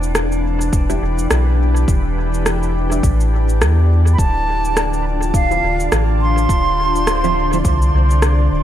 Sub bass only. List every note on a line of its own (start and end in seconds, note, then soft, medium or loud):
0.00 0.70 E1 medium
0.73 0.99 E1 medium
1.01 1.27 E1 medium
1.30 1.85 B1 medium
1.88 3.01 E1 medium
3.03 3.62 A1 loud
3.60 4.16 E2 medium
4.19 5.32 D1 medium
5.34 5.60 D1 medium
5.63 5.89 D1 medium
5.92 6.47 A1 medium
6.49 7.62 D1 loud
7.65 7.91 C2 medium
7.94 8.49 C2 loud
8.51 8.63 D1 medium